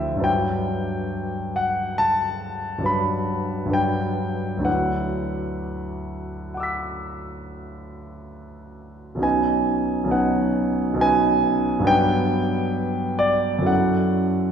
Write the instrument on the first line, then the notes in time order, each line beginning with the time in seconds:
grand piano
Already playing: D2 F3 D4 E4 C5 E5 G5
0.16 G2 F#3 D4
0.21 B4 G5
1.56 F#5
1.98 A5
2.78 G2 F#3 D4
2.84 B4 B5
3.66 G2 F#3 D4
3.71 B4 G5
4.57 D2 F#3 D4
4.63 E4 B4 F#5
6.54 F#5 D6
6.60 E6 B6
9.15 B1 F#3 C#4
9.20 D#4 B4 G#5
10.04 B1 F#3 C#4
10.09 D#4 B4 F#5
10.94 B1 F#3 C#4
10.99 D#4 B4 G#5
11.80 G2 F#3 B3
11.84 D4 B4 G5
13.19 D5
13.59 F#2 F#3 C#4
13.64 E4 A4 F#5